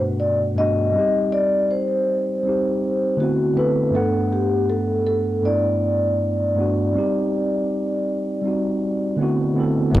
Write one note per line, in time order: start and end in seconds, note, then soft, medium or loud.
0.00 0.18 G2 medium
0.00 0.19 B2 medium
0.00 0.19 A3 medium
0.00 0.20 D4 medium
0.00 0.21 F#4 medium
0.20 0.36 D5 medium
0.54 0.83 G2 medium
0.54 0.83 A3 medium
0.54 0.84 B3 medium
0.54 1.34 D#5 medium
0.59 0.85 D4 medium
0.59 0.86 F#4 medium
0.93 1.95 G3 medium
0.93 1.97 C4 medium
0.97 1.97 D#4 medium
0.97 1.99 G4 medium
1.32 1.71 D5 medium
1.71 3.24 C5 medium
2.43 3.18 G3 medium
2.43 3.19 C4 medium
2.47 3.20 D#4 medium
2.47 3.21 G4 medium
3.17 3.49 D3 medium
3.17 3.50 A3 medium
3.17 3.50 B3 medium
3.17 3.51 C4 medium
3.17 3.58 F#4 medium
3.22 3.52 E4 medium
3.22 3.52 F#4 medium
3.53 3.82 D3 medium
3.53 3.83 A3 medium
3.53 3.83 B3 medium
3.53 3.84 C4 medium
3.57 3.84 E4 medium
3.57 3.85 A4 medium
3.57 3.95 B4 medium
3.91 4.94 G2 medium
3.91 4.95 A3 medium
3.91 4.96 B3 medium
3.95 4.97 D4 medium
3.95 4.33 A4 medium
3.95 4.97 F#5 medium
4.33 4.71 G4 medium
4.70 5.04 A4 medium
5.07 5.45 A4 medium
5.42 6.18 G2 medium
5.42 6.18 A3 medium
5.42 6.19 B3 medium
5.42 9.16 D5 medium
5.46 6.20 D4 medium
5.46 6.21 E4 medium
6.55 6.83 G2 medium
6.55 6.84 A3 medium
6.55 6.84 B3 medium
6.59 6.85 D4 medium
6.59 6.86 F#4 medium
6.93 7.95 G3 medium
6.93 7.96 C4 medium
6.97 7.97 D#4 medium
6.97 7.98 G4 medium
8.42 9.18 G3 medium
8.42 9.19 C4 medium
8.42 9.20 D#4 medium
8.48 9.21 F#4 medium
9.16 9.49 D3 medium
9.16 9.50 A3 medium
9.16 9.50 B3 medium
9.16 9.51 C4 medium
9.21 9.51 E4 medium
9.21 9.52 F#4 medium
9.54 9.82 D3 medium
9.54 9.83 A3 medium
9.54 9.84 B3 medium
9.54 9.84 C4 medium
9.59 9.85 E4 medium
9.59 9.85 A4 medium
9.91 10.00 G1 loud
9.91 10.00 A3 loud
9.91 10.00 B3 medium
9.91 10.00 D4 loud